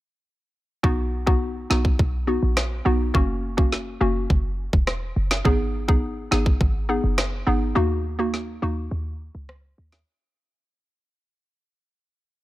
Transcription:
0.83 808-style bass B1, synth pluck B3 D#4 F#4, kick
1.26 synth pluck B3 D#4 F#4, kick
1.70 808-style bass B1, synth pluck B3 D#4 F#4, snare
1.85 kick
1.99 808-style bass B1, kick
2.27 synth pluck B3 D#4 F#4
2.43 808-style bass A#1
2.57 cross-stick, snare
2.85 808-style bass B1, synth pluck B3 D#4 F#4
3.14 808-style bass F#1, synth pluck A#3 C#4 F#4, kick
3.57 synth pluck A#3 C#4 F#4, kick
3.72 snare
4.01 808-style bass F#1, synth pluck A#3 C#4 F#4
4.30 808-style bass F#1, kick
4.73 808-style bass E1, kick
4.87 cross-stick, snare
5.16 808-style bass F#1
5.31 snare
5.45 808-style bass G#1, synth pluck B3 D#4 G#4, kick
5.88 synth pluck B3 D#4 G#4, kick
6.31 808-style bass G#1, synth pluck B3 D#4 G#4, snare
6.46 kick
6.61 808-style bass G#1, kick
6.89 synth pluck B3 D#4 G#4
7.04 808-style bass F#1
7.18 cross-stick, snare
7.47 808-style bass G#1, synth pluck B3 D#4 G#4
7.75 808-style bass D#2, synth pluck A#3 D#4 F#4
8.19 synth pluck A#3 D#4 F#4
8.34 snare
8.62 808-style bass D#2, synth pluck A#3 D#4 F#4
8.91 808-style bass D#2
9.35 808-style bass C#2
9.49 cross-stick
9.78 808-style bass D#2
9.92 snare

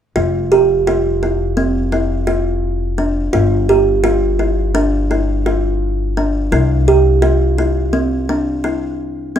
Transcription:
0.16 upright bass F1, kalimba F4
0.52 kalimba G4
0.87 kalimba F4
1.23 kalimba E4
1.57 kalimba C4
1.92 kalimba E4
2.27 kalimba F4
2.98 kalimba D4
3.33 upright bass G1, kalimba F4
3.69 kalimba G4
4.04 kalimba F4
4.39 kalimba E4
4.75 kalimba D4
5.11 kalimba E4
5.46 kalimba F4
6.17 kalimba D4
6.52 upright bass C2, kalimba E4
6.88 kalimba G4
7.22 kalimba F4
7.58 kalimba E4
7.93 kalimba C4
8.29 kalimba D4
8.64 kalimba E4
9.36 kalimba C4

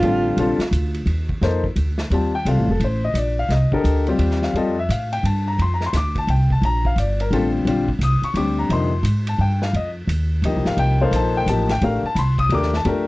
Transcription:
Already playing: alto saxophone F4
0.02 upright bass A1, grand piano D3 G3 C4 F4 A4, ride
0.37 upright bass A#1, grand piano D3 G3 C4 F4 A4, ride
0.58 muted upright bass stroke, snare, ride
0.71 upright bass D2, hi-hat pedal, ride
0.94 ride
1.06 upright bass D#2, ride
1.29 kick
1.41 upright bass F2, grand piano A#3 D#4 A4 C5, snare, ride
1.64 kick
1.76 upright bass D2, hi-hat pedal, ride
1.98 snare
2.10 upright bass D#2, grand piano G3 C4 F4 G4 A5, ride
2.35 grand piano G5
2.45 upright bass C2, grand piano G3 C4 F4 A4 F5, ride
2.57 upright bass A1
2.68 upright bass F1, grand piano A4
2.80 upright bass A1, ride
2.84 grand piano C5
3.04 grand piano D#5
3.14 upright bass A#1, grand piano D5, hi-hat pedal, ride
3.39 grand piano F5
3.49 upright bass C2, grand piano D#5, snare, ride
3.72 grand piano D3 G4 A4 A#4, muted upright bass stroke, kick
3.84 upright bass D2, hi-hat pedal, ride
4.07 grand piano G3 C4 F4 G4, ride
4.18 upright bass D#2, ride
4.31 snare
4.42 grand piano F5, snare
4.54 upright bass F2, grand piano G3 C4 F4 A4 D#5, ride
4.79 grand piano E5
4.89 upright bass A2, grand piano F5, hi-hat pedal, ride
5.13 grand piano G5, ride
5.23 upright bass G2, grand piano A5, ride
5.48 grand piano A#5
5.58 upright bass F2, grand piano C6, ride
5.74 grand piano A#5
5.81 snare
5.86 grand piano C6
5.93 upright bass D2, grand piano D6, snare, hi-hat pedal, ride
6.16 grand piano A5, kick, ride
6.27 upright bass C2, grand piano G5, ride
6.50 grand piano A5, kick
6.62 upright bass A#1, grand piano A#5, ride
6.85 grand piano F5, kick
6.96 upright bass G1, grand piano D5, hi-hat pedal, ride
7.20 grand piano A#4, ride
7.31 upright bass A1, grand piano D3 G3 C4 F4 A4, ride
7.65 upright bass A#1, grand piano D3 G3 C4 F4, ride
7.89 kick
7.99 upright bass C2, hi-hat pedal, ride
8.03 grand piano D#6
8.22 grand piano C#6, muted upright bass stroke, ride
8.34 upright bass D2, grand piano D3 G3 C4 G4 D6, ride
8.59 grand piano A#5
8.69 upright bass F2, grand piano C3 F3 A#3 D#4 C6, ride
9.03 upright bass G#2, hi-hat pedal, ride
9.27 grand piano A5, ride
9.38 upright bass G2, grand piano G5
9.62 grand piano F5, snare
9.73 upright bass F2, grand piano D#5, ride
10.07 upright bass D#2, hi-hat pedal, ride
10.42 upright bass D2, grand piano F3 A#3 D#4 G4 D#5, ride
10.54 upright bass C2
10.65 upright bass A1, grand piano F5, snare
10.77 upright bass C2, grand piano G5, ride
11.01 grand piano A#3 D#4 A4 C5 F5
11.11 upright bass A#1, hi-hat pedal, ride
11.15 grand piano A5
11.37 grand piano G5
11.46 upright bass A1, grand piano F3 A#3 D#4 G4 A5, hi-hat pedal, ride
11.69 grand piano G5, snare, ride
11.81 upright bass A1, grand piano A3 D4 G4 A#4 F5, ride
12.03 grand piano A5, muted upright bass stroke
12.15 upright bass C2, grand piano B5, hi-hat pedal, ride
12.19 grand piano C6
12.38 grand piano D#6, kick, ride
12.49 upright bass D#2, grand piano A3 D4 G4 A#4, ride
12.54 grand piano D6
12.62 snare
12.74 grand piano A5, snare
12.85 upright bass F2, grand piano A3 D4 G4 A#4, ride

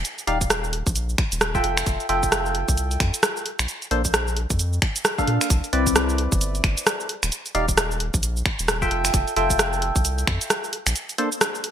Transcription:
0.05 closed hi-hat, cabasa
0.18 closed hi-hat, cabasa
0.27 sub bass D#1, synth stab D#4 G4 D5 F5, open hi-hat
0.41 kick, closed hi-hat, cabasa
0.50 cross-stick, closed hi-hat, cabasa
0.64 cabasa
0.73 open hi-hat
0.87 sub bass A#1, kick, cabasa
0.96 closed hi-hat, cabasa
1.09 cabasa
1.18 finger snap, kick, open hi-hat
1.32 sub bass D#1, closed hi-hat, cabasa
1.41 cross-stick, open hi-hat, cabasa
1.55 synth stab F4 A4 E5 G5, kick, cabasa
1.64 sub bass F1, open hi-hat
1.77 finger snap, closed hi-hat, cabasa
1.86 sub bass F1, kick, closed hi-hat, cabasa
2.00 closed hi-hat, cabasa
2.09 sub bass F1, synth stab F4 A4 E5 G5, open hi-hat
2.23 kick, closed hi-hat, cabasa
2.32 cross-stick, closed hi-hat, cabasa
2.46 cabasa
2.55 open hi-hat
2.68 sub bass C2, kick, cabasa
2.77 closed hi-hat, cabasa
2.91 open hi-hat, cabasa
3.00 sub bass F2, finger snap, kick, open hi-hat
3.14 closed hi-hat, cabasa
3.23 cross-stick, closed hi-hat, cabasa
3.37 cabasa
3.46 open hi-hat
3.59 sub bass A#1, finger snap, closed hi-hat, cabasa
3.68 closed hi-hat, cabasa
3.82 closed hi-hat, cabasa
3.91 sub bass A#1, synth stab A#3 D4 A4 C5, open hi-hat
4.05 kick, closed hi-hat, cabasa
4.14 cross-stick, closed hi-hat, cabasa
4.28 cabasa
4.37 open hi-hat
4.50 sub bass F2, kick, cabasa
4.59 closed hi-hat, cabasa
4.73 cabasa
4.82 finger snap, kick, open hi-hat
4.96 closed hi-hat, cabasa
5.05 cross-stick, open hi-hat, cabasa
5.18 synth stab A#3 D4 A4 F5, kick, cabasa
5.27 sub bass A#2, open hi-hat
5.41 finger snap, closed hi-hat, cabasa
5.50 sub bass C2, kick, closed hi-hat, cabasa
5.64 closed hi-hat, cabasa
5.73 sub bass C2, synth stab C4 E4 B4 D5, open hi-hat
5.87 kick, closed hi-hat, cabasa
5.96 cross-stick, closed hi-hat, cabasa
6.09 cabasa
6.18 open hi-hat
6.32 sub bass G1, kick, cabasa
6.41 closed hi-hat, cabasa
6.55 open hi-hat, cabasa
6.64 sub bass G1, finger snap, kick, open hi-hat
6.77 closed hi-hat, cabasa
6.87 cross-stick, closed hi-hat, cabasa
7.00 cabasa
7.09 open hi-hat
7.23 sub bass D#1, finger snap, closed hi-hat, cabasa
7.32 closed hi-hat, cabasa
7.46 closed hi-hat, cabasa
7.55 sub bass D#1, synth stab D#4 G4 D5 F5, open hi-hat
7.68 kick, closed hi-hat, cabasa
7.78 cross-stick, closed hi-hat, cabasa
7.91 cabasa
8.00 open hi-hat
8.14 sub bass A#1, kick, cabasa
8.23 closed hi-hat, cabasa
8.37 cabasa
8.46 finger snap, kick, open hi-hat
8.59 sub bass D#1, closed hi-hat, cabasa
8.68 cross-stick, open hi-hat, cabasa
8.82 synth stab F4 A4 E5 G5, kick, cabasa
8.91 sub bass F1, open hi-hat
9.05 finger snap, closed hi-hat, cabasa
9.14 sub bass F1, kick, closed hi-hat, cabasa
9.28 closed hi-hat, cabasa
9.36 sub bass F1, synth stab F4 A4 E5 G5, open hi-hat
9.50 kick, closed hi-hat, cabasa
9.59 cross-stick, closed hi-hat, cabasa
9.73 cabasa
9.82 open hi-hat
9.96 sub bass C2, kick, cabasa
10.05 closed hi-hat, cabasa
10.18 open hi-hat, cabasa
10.27 sub bass F2, finger snap, kick, open hi-hat
10.41 closed hi-hat, cabasa
10.50 cross-stick, closed hi-hat, cabasa
10.64 cabasa
10.73 open hi-hat
10.87 sub bass A#1, finger snap, closed hi-hat, cabasa
10.96 closed hi-hat, cabasa
11.09 closed hi-hat, cabasa
11.18 synth stab A#3 D4 A4 C5, open hi-hat
11.32 closed hi-hat, cabasa
11.41 cross-stick, closed hi-hat, cabasa
11.55 cabasa
11.64 open hi-hat

